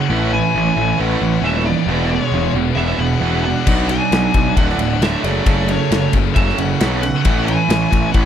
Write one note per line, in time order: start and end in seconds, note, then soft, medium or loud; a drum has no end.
0.00 0.29 C#4 medium
0.00 0.33 F#5 loud
0.09 0.40 A1 loud
0.09 0.17 A2 medium
0.09 0.18 E3 loud
0.09 1.87 A3 medium
0.09 0.32 A3 loud
0.09 1.86 E4 medium
0.09 1.86 B4 medium
0.09 1.86 C#5 medium
0.18 0.25 A2 medium
0.18 0.25 E3 medium
0.25 0.33 A2 medium
0.25 0.33 E3 medium
0.33 0.41 A2 medium
0.33 0.41 E3 medium
0.33 0.96 E4 loud
0.33 1.00 G#5 loud
0.42 0.49 A2 medium
0.42 0.49 E3 medium
0.49 0.55 A2 medium
0.49 0.56 E3 medium
0.55 0.70 A1 medium
0.55 0.63 A2 medium
0.55 0.64 E3 medium
0.64 0.71 A2 medium
0.64 0.72 E3 medium
0.72 0.79 A2 medium
0.72 0.79 E3 medium
0.77 0.92 A1 loud
0.77 0.97 A2 medium
0.77 0.87 E3 medium
0.81 0.87 A2 medium
0.88 0.95 A2 medium
0.88 0.96 E3 medium
0.95 1.02 A2 medium
0.95 1.03 E3 medium
1.00 1.15 A1 medium
1.00 1.09 A2 medium
1.00 1.11 E3 loud
1.00 1.20 A3 loud
1.00 1.41 C#4 medium
1.00 1.46 F#5 loud
1.10 1.18 A2 medium
1.10 1.18 E3 medium
1.18 1.37 A1 loud
1.18 1.25 A2 medium
1.18 1.26 E3 medium
1.23 1.33 A2 medium
1.23 1.42 E3 medium
1.27 1.34 E3 medium
1.35 1.41 A2 medium
1.35 1.42 E3 medium
1.41 1.73 D#1 medium
1.41 1.49 A2 medium
1.41 1.50 E3 medium
1.41 1.65 A3 loud
1.41 1.65 E5 loud
1.46 1.57 A2 medium
1.46 1.66 C#4 medium
1.50 1.57 E3 medium
1.57 1.64 A2 medium
1.57 1.65 E3 medium
1.65 1.73 A2 medium
1.65 1.72 E3 medium
1.65 2.08 B3 medium
1.65 2.10 D5 loud
1.72 1.79 A2 medium
1.72 1.80 E3 medium
1.79 1.87 A2 medium
1.79 1.88 E3 medium
1.87 2.18 E1 loud
1.87 1.94 E2 medium
1.87 1.95 B2 medium
1.87 3.65 E3 medium
1.87 2.10 E3 loud
1.87 4.54 B3 medium
1.87 4.54 F#4 medium
1.87 3.65 G#4 medium
1.94 2.02 E2 medium
1.94 2.03 B2 medium
2.03 2.10 E2 medium
2.03 2.11 B2 medium
2.11 2.17 E2 medium
2.11 2.19 B2 medium
2.11 2.53 G#3 medium
2.11 2.52 C#5 medium
2.18 2.25 E2 medium
2.18 2.26 B2 medium
2.26 2.33 E2 medium
2.26 2.34 B2 medium
2.32 2.47 E1 medium
2.32 2.41 E2 medium
2.32 2.42 B2 medium
2.42 2.49 E2 medium
2.42 2.50 B2 medium
2.49 2.57 E2 medium
2.49 2.58 B2 medium
2.55 2.70 E1 loud
2.55 2.65 E2 medium
2.55 2.64 B2 medium
2.65 2.72 E2 medium
2.65 2.73 B2 medium
2.73 2.92 E1 medium
2.73 2.81 E2 medium
2.73 2.81 B2 medium
2.73 3.00 E5 medium
2.78 2.88 E2 medium
2.78 2.89 B2 medium
2.78 2.99 E3 loud
2.78 2.99 B3 medium
2.88 2.96 E2 medium
2.88 2.96 B2 medium
2.96 3.14 E1 medium
2.96 3.04 E2 medium
2.96 3.03 B2 medium
2.96 3.43 F#5 loud
3.00 3.12 E2 medium
3.00 3.11 B2 medium
3.00 3.42 B3 medium
3.12 3.19 E2 medium
3.12 3.19 B2 medium
3.19 3.52 E1 medium
3.19 3.27 E2 medium
3.19 3.27 B2 medium
3.23 3.44 E3 loud
3.27 3.34 E2 medium
3.27 3.34 B2 medium
3.34 3.42 E2 medium
3.34 3.42 B2 medium
3.42 3.51 E2 medium
3.42 3.50 B2 medium
3.42 3.87 D4 medium
3.42 3.89 F#5 loud
3.51 3.58 E2 medium
3.51 3.57 B2 medium
3.58 3.66 E2 medium
3.58 3.65 B2 medium
3.66 3.98 B1 loud
3.66 3.74 B2 medium
3.66 3.74 F#3 medium
3.66 3.89 B3 loud
3.66 4.55 C#5 medium
3.66 4.55 D5 medium
3.66 kick loud
3.66 crash loud
3.74 3.81 B2 medium
3.74 3.82 F#3 medium
3.81 3.88 B2 medium
3.81 3.90 F#3 medium
3.89 3.97 B2 medium
3.89 3.96 F#3 medium
3.89 4.52 D4 medium
3.89 4.56 G#5 loud
3.89 ride medium
3.97 4.04 B2 medium
3.97 4.04 F#3 medium
4.04 4.12 B2 medium
4.04 4.12 F#3 medium
4.12 4.27 B1 medium
4.12 4.18 B2 medium
4.12 4.19 F#3 medium
4.12 snare loud
4.12 ride loud
4.18 4.25 B2 medium
4.18 4.27 F#3 medium
4.25 4.33 B2 medium
4.25 4.34 F#3 medium
4.34 4.50 B1 medium
4.34 4.40 B2 medium
4.34 4.42 F#3 medium
4.34 kick medium
4.34 ride medium
4.40 4.48 B2 medium
4.40 4.48 F#3 medium
4.49 4.56 B2 medium
4.49 4.56 F#3 medium
4.56 4.72 D1 loud
4.56 4.64 D2 medium
4.56 4.64 A2 medium
4.56 4.78 D3 loud
4.56 5.22 D4 medium
4.56 4.98 D4 medium
4.56 7.21 A4 medium
4.56 5.22 E5 medium
4.56 5.22 F#5 medium
4.56 5.02 F#5 loud
4.56 kick loud
4.56 ride medium
4.64 4.71 D2 medium
4.64 4.72 A2 medium
4.69 4.79 D2 medium
4.69 4.79 A2 medium
4.69 snare soft
4.79 4.94 D1 medium
4.79 4.85 D2 medium
4.79 4.86 A2 medium
4.79 ride medium
4.86 4.93 D2 medium
4.86 4.94 A2 medium
4.94 5.00 D2 medium
4.94 5.02 A2 medium
4.99 5.15 D1 medium
4.99 5.08 D2 medium
4.99 5.09 A2 medium
4.99 5.23 A3 medium
4.99 5.23 E5 loud
4.99 snare loud
4.99 ride loud
5.04 5.23 D3 loud
5.10 5.15 D2 medium
5.10 5.17 A2 medium
5.15 5.23 D2 medium
5.15 5.24 A2 medium
5.23 5.39 F#1 medium
5.23 5.31 F#2 medium
5.23 7.23 C#3 medium
5.23 5.31 C#3 medium
5.23 7.22 F#3 medium
5.23 5.45 F#3 medium
5.23 5.67 A3 medium
5.23 7.23 G#4 medium
5.23 5.69 D5 medium
5.23 snare soft
5.23 ride medium
5.31 5.38 F#2 medium
5.31 5.39 C#3 medium
5.38 5.46 F#2 medium
5.38 5.48 C#3 medium
5.46 5.76 F#1 loud
5.46 5.54 F#2 medium
5.46 5.55 C#3 medium
5.46 5.67 F#3 loud
5.46 kick loud
5.46 ride loud
5.54 5.62 F#2 medium
5.54 5.63 C#3 medium
5.62 5.69 F#2 medium
5.62 5.70 C#3 medium
5.68 5.77 F#2 medium
5.68 5.78 C#3 medium
5.68 6.11 A3 medium
5.68 6.11 C#5 medium
5.68 ride medium
5.77 5.85 F#2 medium
5.77 5.86 C#3 medium
5.86 5.92 F#2 medium
5.86 5.94 C#3 medium
5.91 6.06 F#1 medium
5.91 6.00 F#2 medium
5.91 6.01 C#3 medium
5.91 snare loud
5.91 ride loud
6.01 6.08 F#2 medium
6.01 6.08 C#3 medium
6.09 6.16 F#2 medium
6.09 6.16 C#3 medium
6.13 6.29 F#1 loud
6.13 kick medium
6.13 ride medium
6.17 6.24 F#2 medium
6.17 6.25 C#3 medium
6.25 6.32 F#2 medium
6.25 6.32 C#3 medium
6.32 6.39 F#2 medium
6.32 6.40 C#3 medium
6.32 6.58 E5 loud
6.36 6.51 F#1 medium
6.36 6.47 F#2 medium
6.36 6.57 F#3 loud
6.36 6.57 C#4 medium
6.36 kick loud
6.36 ride loud
6.40 6.47 C#3 medium
6.48 6.54 F#2 medium
6.48 6.55 C#3 medium
6.48 snare soft
6.55 6.73 F#1 medium
6.55 6.63 F#2 medium
6.55 6.63 C#3 medium
6.55 6.99 C#4 loud
6.55 7.00 F#5 loud
6.55 ride medium
6.63 6.70 F#2 medium
6.63 6.71 C#3 medium
6.70 6.78 F#2 medium
6.70 6.79 C#3 medium
6.80 7.11 B1 medium
6.80 6.86 F#2 medium
6.80 6.86 C#3 medium
6.80 7.02 F#3 medium
6.80 snare loud
6.80 ride loud
6.86 6.94 F#2 medium
6.86 6.94 C#3 medium
6.95 7.02 F#2 medium
6.95 7.03 C#3 medium
7.01 7.23 F#2 medium
7.01 7.23 C#3 medium
7.01 7.44 C#4 medium
7.01 7.45 F#5 loud
7.01 snare soft
7.01 ride medium
7.25 7.56 A1 loud
7.25 7.32 A2 medium
7.25 7.32 E3 loud
7.25 8.25 A3 medium
7.25 7.46 A3 loud
7.25 8.25 E4 medium
7.25 8.25 B4 medium
7.25 8.25 C#5 medium
7.25 kick loud
7.25 ride loud
7.32 7.39 A2 medium
7.32 7.39 E3 medium
7.40 7.47 A2 medium
7.40 7.48 E3 medium
7.45 7.55 A2 medium
7.45 7.56 E3 medium
7.45 8.09 E4 loud
7.45 8.12 G#5 loud
7.45 ride medium
7.55 7.63 A2 medium
7.55 7.63 E3 medium
7.64 7.71 A2 medium
7.64 7.70 E3 medium
7.69 7.84 A1 medium
7.69 7.79 A2 medium
7.69 7.78 E3 medium
7.69 snare loud
7.69 ride loud
7.80 7.86 A2 medium
7.80 7.88 E3 medium
7.87 7.95 A2 medium
7.87 7.94 E3 medium
7.92 8.07 A1 loud
7.92 8.01 A2 medium
7.92 8.02 E3 medium
7.92 kick medium
7.92 ride medium
8.02 8.09 A2 medium
8.02 8.10 E3 medium
8.10 8.17 A2 medium
8.10 8.18 E3 medium
8.10 8.25 C#4 medium
8.10 8.25 F#5 loud
8.14 8.25 A1 loud
8.14 8.25 E3 medium
8.14 8.25 A3 loud
8.14 kick loud
8.14 ride medium
8.18 8.25 A2 medium